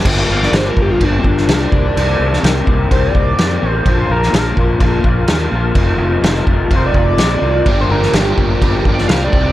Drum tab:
CC |x---x---x---x---|x---x---x---x---|x---x---x---x---|x---x---x---x---|
SD |---oo------oo---|---oo-------o---|---oo-------o---|----o-------o---|
BD |o-----o-o-o---o-|------o-o-o-----|o-----o-o-o-----|o-----o-o-o-----|

CC |x---x---x---x---|
SD |---oo------oo---|
BD |o-----o-o-o---o-|